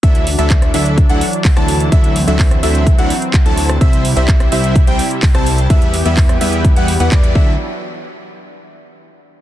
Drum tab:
HH |xxoxxxoxxxoxoxox|xxoxoxoxxxoxxxox|xxoxxxoxxxoxoxox|xxoxoxoxxxoxxx--|
CP |----x-------x---|----x-------x---|----x-------x---|----x-------x---|
SD |-----r-------r--|-----r---------r|-----r-------r--|-----r----------|
BD |o---o---o---o---|o---o---o---o---|o---o---o---o---|o---o---o---o-o-|

HH |----------------|
CP |----------------|
SD |----------------|
BD |----------------|